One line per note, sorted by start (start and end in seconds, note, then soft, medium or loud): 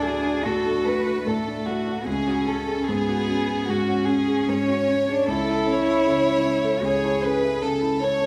0.00 0.41 D2 soft
0.00 0.46 A2 soft
0.00 0.05 A3 soft
0.00 0.46 D4 medium
0.00 0.65 D4 soft
0.00 0.25 F#4 soft
0.00 0.45 G#4 soft
0.05 0.37 A3 soft
0.05 0.17 F#4 soft
0.25 0.38 D4 medium
0.25 0.57 F#4 soft
0.45 0.78 A2 soft
0.45 1.23 F#4 medium
0.45 0.57 F#4 soft
0.45 0.86 A4 soft
0.65 0.97 D4 soft
0.65 0.78 D5 soft
0.85 1.18 A3 soft
0.85 0.98 D4 medium
0.85 1.26 B4 medium
1.06 1.38 F#4 soft
1.06 1.18 A4 soft
1.23 1.59 A2 soft
1.23 2.07 A3 medium
1.23 1.65 A4 soft
1.23 1.39 D5 soft
1.46 1.58 D4 medium
1.46 1.79 D4 soft
1.66 1.99 A3 soft
1.66 2.07 F#4 soft
1.66 1.79 D5 soft
1.86 2.07 F#4 soft
1.86 1.98 D5 soft
2.06 3.64 C#2 soft
2.06 2.89 C#4 medium
2.06 2.18 C#4 medium
2.06 2.46 G#4 medium
2.26 2.59 F#4 soft
2.26 2.38 C#5 soft
2.47 2.79 C#4 soft
2.47 2.59 G#4 soft
2.47 2.88 A4 soft
2.67 2.79 G#4 soft
2.67 3.00 G#4 soft
2.86 3.20 G#2 soft
2.86 3.70 B3 medium
2.86 2.98 C#4 medium
2.86 3.67 G#4 medium
3.09 3.40 F#4 soft
3.27 3.60 C#4 soft
3.27 3.39 F#4 soft
3.48 3.60 C#4 medium
3.48 3.80 G#4 soft
3.67 4.00 G#2 soft
3.67 5.08 C#4 medium
3.67 4.07 F#4 soft
3.67 3.80 F#4 soft
3.88 4.20 F#4 soft
3.88 4.00 C#5 soft
4.06 4.39 C#4 soft
4.06 4.20 C#4 medium
4.06 4.47 G#4 medium
4.28 4.40 G#4 soft
4.28 4.60 G#4 soft
4.48 4.80 G#2 soft
4.48 5.27 C#5 medium
4.48 4.60 C#5 soft
4.68 4.80 C#4 medium
4.68 5.00 F#4 soft
4.88 5.19 C#4 soft
5.09 5.32 D4 medium
5.09 5.28 G#4 soft
5.09 5.20 C#5 soft
5.28 6.80 C#2 medium
5.28 6.86 E4 medium
5.28 5.39 A4 medium
5.28 5.66 A4 medium
5.48 5.79 E4 soft
5.48 5.59 A5 soft
5.67 5.98 C#4 soft
5.67 6.83 C#5 medium
5.67 5.79 E5 soft
5.87 6.18 A4 soft
5.87 5.98 E5 soft
6.06 6.37 C#3 soft
6.06 6.18 A4 medium
6.24 6.56 E4 soft
6.45 6.76 C#4 soft
6.45 6.56 C#5 soft
6.64 6.95 A4 soft
6.64 6.76 A4 medium
6.83 8.26 C#2 soft
6.83 7.62 G#4 medium
6.83 7.22 C#5 medium
6.83 6.95 C#5 soft
7.03 7.34 E4 soft
7.03 7.15 A5 soft
7.22 7.53 C#4 soft
7.22 7.35 A4 medium
7.22 7.62 B4 medium
7.42 7.73 A4 soft
7.42 7.55 E5 soft
7.62 7.93 C#3 soft
7.62 8.00 A4 medium
7.62 7.74 A5 soft
7.82 8.12 E4 soft
7.82 7.93 A4 medium
8.00 8.26 C#4 soft
8.00 8.26 C#5 medium
8.00 8.12 A5 soft
8.20 8.26 A4 soft
8.20 8.26 A5 medium